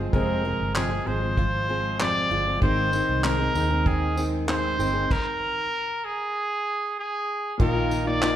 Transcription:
Already playing: G#3 C4 F4 G#4 C5
0.00 F3 G#3 C4
0.13 F1 F2 C3 F3 G#3 C4 F4 G#4 A#4, kick
0.23 C5
0.45 F3 G#3 C4 G#4
0.61 G1
0.75 F2 C3 F3 G#3 C4 G#4, clap
0.91 F3 G#3 C4 G#4
1.06 G#1 F3 G#3 C4 G#4 C5
1.22 F3 G#3 C4 G#4
1.37 F4, kick
1.69 F3 G#3 C4 G#4
2.00 F2 C3 F3 G#3 C4 G#4 D5, clap
2.31 G1 F3 G#3 C4 F4 G#4
2.47 F3 G#3 C4 G#4
2.60 G#1 G#2 D#3 G#3 C4 D#4 G#4 C5, kick
2.64 C5
2.93 D#3 G#3 C4 D#4 G#4, tambourine
3.09 C2
3.24 G#2 D#3 G#3 C4 D#4 G#4 A#4, clap
3.39 G#3 C4 D#4 G#4
3.54 D#2 D#3 G#3 C4 D#4 G#4, tambourine
3.70 G#3 C4 D#4 G#4
3.86 C4 G#4, kick
4.16 D#3 G#3 C4 D#4 G#4, tambourine
4.48 G#2 D#3 G#3 C4 D#4 G#4 C5, clap
4.78 G1 G#3 C4 D#4 G#4, tambourine
4.94 G#3 C4 D#4 G#4
5.11 A#4, kick, crash
6.05 G#4
6.99 G#4
7.58 A#1 A#2 D#3 A#3 D#4 F4 F5, kick
7.62 A#4
7.74 A#3 D#4 F4
7.91 D#4, tambourine
8.05 A#3 D#4 F4 D5
8.22 A#2 D#3 A#3 D#4 F4, clap

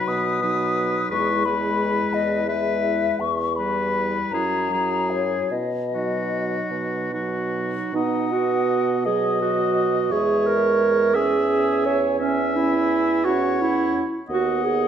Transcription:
Already playing: F#3 D#4 B4
0.08 B2 D#6
0.42 F#3 D#4 B4
1.11 E2 G#3 E4 B4 C#6
1.45 G#3 E4 B4 B5
2.13 E2 D#5
2.47 G#3 E4 B4 E5
3.20 E2 C#6
3.56 G3 E4 B4 B5
4.32 F#2 F#3 E4 G#4 A#5
4.71 F#3 E4 G#4
5.10 C#5
5.51 B2 D#5
5.94 F#3 D#4 F#4
6.71 B2
7.12 F#3 D#4 F#4
7.93 B2 B3 D#4 D#5 F#5
8.32 F#4
9.05 F#3 G#4 D#5
9.42 F#4
10.11 E2 G#3 G#4 C#5 E5
10.47 A#4
11.14 C#4 G#4 E5 G#5
11.86 C#5
12.20 C#4 E5 G#5
12.56 E4
13.24 C#4 F#4 C#5 F#5
13.61 E4
14.28 D#2 B3 F#4 D#5 F#5
14.64 G#4

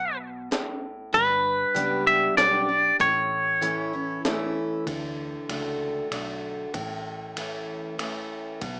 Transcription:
Already playing: B1 B2 F#5
0.51 A2, snare, closed hi-hat
1.13 G1 G2 B4, kick, closed hi-hat
1.75 C#2 G3 B3 D4 G4, closed hi-hat
2.07 E5
2.37 B1 G3 B3 D4 G4 D5, snare, closed hi-hat
2.69 D4 G4
3.00 A1 A2 C#5, kick, closed hi-hat
3.61 E3 A3 C#4 E4, closed hi-hat
3.93 C#4 E4
4.25 E3 A3 C#4 E4, snare, closed hi-hat
4.86 D2 D3, kick, ride
5.49 C#2 A3 D4 F#4, finger snap, ride
6.11 B1 D3 A3 D4 F#4, finger snap, ride
6.74 A1 A2, kick, ride
7.36 E3 A3 C#4 E4, finger snap, ride
7.98 E3 A3 C#4 E4, finger snap, ride
8.61 B1 B2, kick, ride

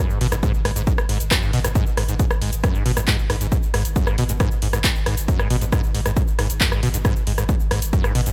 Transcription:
0.00 F#2
0.10 G#1 G#2, shaker
0.21 G#1 B2, open hi-hat
0.32 G#1 G#2, cross-stick, closed hi-hat, shaker
0.43 G#2, kick, closed hi-hat, shaker
0.54 G#1, shaker
0.65 G#1 G#2, cross-stick, open hi-hat
0.76 G#1 G#2, closed hi-hat, shaker
0.87 G#2, kick, closed hi-hat, shaker
0.98 G#1, cross-stick, shaker
1.09 G#1 G#2, open hi-hat
1.20 G#1, closed hi-hat, shaker
1.31 F#2, kick, cross-stick, clap, closed hi-hat, shaker
1.42 G#1 G#2, shaker
1.53 G#1 B2, open hi-hat
1.64 G#1 G#2, cross-stick, closed hi-hat, shaker
1.75 G#2, kick, closed hi-hat, shaker
1.86 G#1, shaker
1.97 G#1 G#2, cross-stick, open hi-hat
2.09 G#1 G#2, closed hi-hat, shaker
2.19 G#2, kick, closed hi-hat, shaker
2.31 G#1, cross-stick, shaker
2.42 G#1 G#2, open hi-hat
2.53 G#1, closed hi-hat, shaker
2.64 F#2, kick, cross-stick, closed hi-hat, shaker
2.75 G#1 G#2, shaker
2.86 G#1 B2, open hi-hat
2.97 G#1 G#2, cross-stick, closed hi-hat, shaker
3.08 G#2, kick, clap, closed hi-hat, shaker
3.19 G#1, shaker
3.30 G#1 G#2, cross-stick, open hi-hat
3.41 G#1 G#2, closed hi-hat, shaker
3.52 G#2, kick, closed hi-hat, shaker
3.63 G#1, shaker
3.74 G#1 G#2, cross-stick, open hi-hat
3.85 G#1, closed hi-hat, shaker
3.96 F#2, kick, closed hi-hat, shaker
4.07 G#1 G#2, cross-stick, shaker
4.18 G#1 B2, open hi-hat
4.29 G#1 G#2, closed hi-hat, shaker
4.40 G#2, kick, cross-stick, closed hi-hat, shaker
4.51 G#1, shaker
4.62 G#1 G#2, open hi-hat
4.73 G#1 G#2, cross-stick, closed hi-hat, shaker
4.84 G#2, kick, clap, closed hi-hat, shaker
4.95 G#1, shaker
5.06 G#1 G#2, cross-stick, open hi-hat
5.17 G#1, closed hi-hat, shaker
5.28 F#2, kick, closed hi-hat, shaker
5.39 G#1 G#2, cross-stick, shaker
5.50 G#1 B2, open hi-hat
5.61 G#1 G#2, closed hi-hat, shaker
5.72 G#2, kick, cross-stick, closed hi-hat, shaker
5.84 G#1, shaker
5.95 G#1 G#2, open hi-hat
6.06 G#1 G#2, cross-stick, closed hi-hat, shaker
6.17 G#2, kick, closed hi-hat, shaker
6.28 G#1, shaker
6.39 G#1 G#2, cross-stick, open hi-hat
6.50 G#1, closed hi-hat, shaker
6.61 F#2, kick, clap, closed hi-hat, shaker
6.72 G#1 G#2, cross-stick, shaker
6.83 G#1 B2, open hi-hat
6.94 G#1 G#2, closed hi-hat, shaker
7.05 G#2, kick, cross-stick, closed hi-hat, shaker
7.16 G#1, shaker
7.27 G#1 G#2, open hi-hat
7.38 G#1 G#2, cross-stick, closed hi-hat, shaker
7.49 G#2, kick, closed hi-hat, shaker
7.60 G#1, shaker
7.71 G#1 G#2, cross-stick, open hi-hat
7.82 G#1, closed hi-hat, shaker
7.93 F#2, kick, closed hi-hat, shaker
8.04 G#1 G#2, cross-stick, shaker
8.15 G#1 B2, open hi-hat
8.26 G#1 G#2, closed hi-hat, shaker

